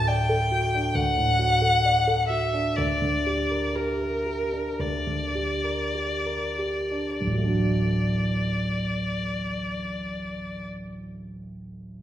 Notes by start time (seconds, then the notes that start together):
Already playing: D2 A2 F#4 A4
0.07 D5 G5
0.29 A4
0.51 F#4
0.74 D4
0.94 D2 F#5
1.17 A2
1.39 F#4
1.62 A4
1.85 D5
2.07 A4
2.29 F#4 E5
2.53 D4
2.76 D2 D5
3.02 D3
3.26 G4
3.51 A#4
3.75 G4 A#4
4.01 A#4
4.26 G4
4.53 D4
4.79 D2 D5
5.07 D3
5.35 G4
5.64 A#4
5.94 G4
6.26 A#4
6.59 G4
6.91 D4
7.19 D1 D5
7.27 A1
7.32 F#3
7.38 A3
7.44 D4
7.50 F#4